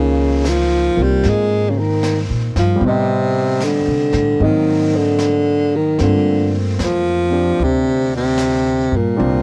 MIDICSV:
0, 0, Header, 1, 5, 480
1, 0, Start_track
1, 0, Tempo, 794702
1, 1695, Time_signature, 4, 2, 24, 8
1, 5692, End_track
2, 0, Start_track
2, 0, Title_t, "Grand piano"
2, 0, Program_c, 0, 0
2, 0, Control_c, 0, 64, 127
2, 0, Note_on_c, 0, 51, 45
2, 0, Note_on_c, 0, 53, 45
2, 0, Note_on_c, 0, 58, 44
2, 0, Note_on_c, 0, 63, 54
2, 575, Note_off_c, 0, 58, 0
2, 584, Note_on_c, 0, 58, 37
2, 591, Note_on_c, 0, 60, 35
2, 601, Note_on_c, 0, 65, 40
2, 1665, Note_on_c, 0, 55, 48
2, 1686, Note_on_c, 0, 59, 43
2, 1690, Note_off_c, 0, 53, 0
2, 1696, Note_off_c, 0, 51, 0
2, 1699, Note_off_c, 0, 58, 0
2, 1700, Note_off_c, 0, 60, 0
2, 1702, Control_c, 0, 64, 0
2, 1706, Note_off_c, 0, 63, 0
2, 1707, Note_off_c, 0, 65, 0
2, 1709, Note_on_c, 0, 60, 44
2, 1731, Note_on_c, 0, 75, 49
2, 1789, Control_c, 0, 64, 127
2, 2638, Note_off_c, 0, 55, 0
2, 2649, Note_off_c, 0, 59, 0
2, 2651, Note_off_c, 0, 60, 0
2, 2654, Note_off_c, 0, 75, 0
2, 2654, Note_on_c, 0, 54, 43
2, 2655, Note_on_c, 0, 58, 40
2, 2661, Note_on_c, 0, 60, 40
2, 2662, Control_c, 0, 64, 0
2, 2663, Note_on_c, 0, 75, 45
2, 2770, Control_c, 0, 64, 127
2, 3614, Note_off_c, 0, 58, 0
2, 3615, Note_off_c, 0, 60, 0
2, 3616, Note_off_c, 0, 54, 0
2, 3616, Note_on_c, 0, 57, 39
2, 3620, Note_off_c, 0, 75, 0
2, 3623, Note_on_c, 0, 58, 37
2, 3624, Control_c, 0, 64, 0
2, 3624, Note_on_c, 0, 60, 36
2, 3628, Note_on_c, 0, 65, 42
2, 3713, Control_c, 0, 64, 127
2, 4398, Note_off_c, 0, 60, 0
2, 4407, Note_on_c, 0, 60, 37
2, 4418, Note_on_c, 0, 62, 34
2, 4425, Note_on_c, 0, 67, 39
2, 5529, Note_off_c, 0, 58, 0
2, 5532, Note_off_c, 0, 62, 0
2, 5534, Note_off_c, 0, 60, 0
2, 5534, Note_on_c, 0, 55, 50
2, 5538, Note_on_c, 0, 58, 44
2, 5539, Note_off_c, 0, 57, 0
2, 5541, Note_on_c, 0, 62, 46
2, 5543, Note_on_c, 0, 60, 52
2, 5544, Note_off_c, 0, 67, 0
2, 5546, Note_off_c, 0, 65, 0
2, 5546, Control_c, 0, 64, 0
2, 5658, Control_c, 0, 64, 127
2, 5692, Note_off_c, 0, 55, 0
2, 5692, Note_off_c, 0, 58, 0
2, 5692, Note_off_c, 0, 60, 0
2, 5692, Note_off_c, 0, 62, 0
2, 5692, End_track
3, 0, Start_track
3, 0, Title_t, "Baritone saxophone"
3, 0, Program_c, 1, 67
3, 0, Note_on_c, 1, 49, 73
3, 290, Note_on_c, 1, 53, 75
3, 300, Note_off_c, 1, 49, 0
3, 621, Note_on_c, 1, 55, 76
3, 630, Note_off_c, 1, 53, 0
3, 779, Note_on_c, 1, 56, 80
3, 788, Note_off_c, 1, 55, 0
3, 1024, Note_on_c, 1, 49, 52
3, 1034, Note_off_c, 1, 56, 0
3, 1080, Note_on_c, 1, 51, 65
3, 1089, Note_off_c, 1, 49, 0
3, 1332, Note_off_c, 1, 51, 0
3, 1561, Note_on_c, 1, 53, 70
3, 1723, Note_on_c, 1, 48, 78
3, 1732, Note_off_c, 1, 53, 0
3, 2199, Note_on_c, 1, 50, 75
3, 2208, Note_off_c, 1, 48, 0
3, 2678, Note_on_c, 1, 51, 71
3, 2687, Note_off_c, 1, 50, 0
3, 2996, Note_on_c, 1, 50, 73
3, 3005, Note_off_c, 1, 51, 0
3, 3477, Note_on_c, 1, 51, 67
3, 3486, Note_off_c, 1, 50, 0
3, 3628, Note_off_c, 1, 51, 0
3, 3634, Note_on_c, 1, 50, 76
3, 3971, Note_off_c, 1, 50, 0
3, 4129, Note_on_c, 1, 53, 72
3, 4611, Note_on_c, 1, 48, 72
3, 4620, Note_off_c, 1, 53, 0
3, 4912, Note_off_c, 1, 48, 0
3, 4928, Note_on_c, 1, 48, 75
3, 5411, Note_on_c, 1, 46, 71
3, 5420, Note_off_c, 1, 48, 0
3, 5692, Note_off_c, 1, 46, 0
3, 5692, End_track
4, 0, Start_track
4, 0, Title_t, "Upright bass"
4, 0, Program_c, 2, 32
4, 0, Note_on_c, 2, 37, 68
4, 556, Note_off_c, 2, 37, 0
4, 586, Note_on_c, 2, 36, 54
4, 733, Note_off_c, 2, 36, 0
4, 754, Note_on_c, 2, 44, 65
4, 1360, Note_off_c, 2, 44, 0
4, 1388, Note_on_c, 2, 46, 50
4, 1530, Note_off_c, 2, 46, 0
4, 1545, Note_on_c, 2, 43, 53
4, 1689, Note_off_c, 2, 43, 0
4, 1696, Note_on_c, 2, 45, 65
4, 2310, Note_off_c, 2, 45, 0
4, 2340, Note_on_c, 2, 48, 51
4, 2486, Note_off_c, 2, 48, 0
4, 2496, Note_on_c, 2, 45, 56
4, 2643, Note_off_c, 2, 45, 0
4, 2659, Note_on_c, 2, 44, 64
4, 3594, Note_off_c, 2, 44, 0
4, 3624, Note_on_c, 2, 43, 70
4, 4077, Note_off_c, 2, 43, 0
4, 4102, Note_on_c, 2, 41, 59
4, 4557, Note_off_c, 2, 41, 0
4, 4587, Note_on_c, 2, 38, 65
4, 5356, Note_off_c, 2, 38, 0
4, 5387, Note_on_c, 2, 43, 52
4, 5534, Note_off_c, 2, 43, 0
4, 5555, Note_on_c, 2, 36, 67
4, 5692, Note_off_c, 2, 36, 0
4, 5692, End_track
5, 0, Start_track
5, 0, Title_t, "Drums"
5, 269, Note_on_c, 9, 38, 37
5, 269, Note_on_c, 9, 44, 45
5, 329, Note_off_c, 9, 38, 0
5, 329, Note_off_c, 9, 44, 0
5, 746, Note_on_c, 9, 25, 28
5, 746, Note_on_c, 9, 38, 23
5, 807, Note_off_c, 9, 38, 0
5, 1226, Note_on_c, 9, 38, 36
5, 1226, Note_on_c, 9, 44, 44
5, 1286, Note_off_c, 9, 38, 0
5, 1286, Note_off_c, 9, 44, 0
5, 1546, Note_on_c, 9, 38, 23
5, 1606, Note_off_c, 9, 38, 0
5, 1702, Note_off_c, 9, 25, 0
5, 1702, Note_on_c, 9, 25, 33
5, 2177, Note_on_c, 9, 38, 36
5, 2177, Note_on_c, 9, 44, 44
5, 2237, Note_off_c, 9, 38, 0
5, 2237, Note_off_c, 9, 44, 0
5, 2492, Note_on_c, 9, 38, 24
5, 2553, Note_off_c, 9, 38, 0
5, 2657, Note_off_c, 9, 25, 0
5, 2657, Note_on_c, 9, 25, 29
5, 3132, Note_on_c, 9, 38, 37
5, 3132, Note_on_c, 9, 44, 40
5, 3192, Note_off_c, 9, 38, 0
5, 3192, Note_off_c, 9, 44, 0
5, 3616, Note_off_c, 9, 25, 0
5, 3616, Note_on_c, 9, 25, 25
5, 3616, Note_on_c, 9, 38, 23
5, 3676, Note_off_c, 9, 38, 0
5, 4102, Note_on_c, 9, 38, 38
5, 4102, Note_on_c, 9, 44, 44
5, 4163, Note_off_c, 9, 38, 0
5, 4163, Note_off_c, 9, 44, 0
5, 4582, Note_off_c, 9, 25, 0
5, 4582, Note_on_c, 9, 25, 31
5, 5059, Note_on_c, 9, 38, 37
5, 5059, Note_on_c, 9, 44, 45
5, 5120, Note_off_c, 9, 38, 0
5, 5120, Note_off_c, 9, 44, 0
5, 5544, Note_off_c, 9, 25, 0
5, 5544, Note_on_c, 9, 25, 25
5, 5692, Note_off_c, 9, 25, 0
5, 5692, End_track
0, 0, End_of_file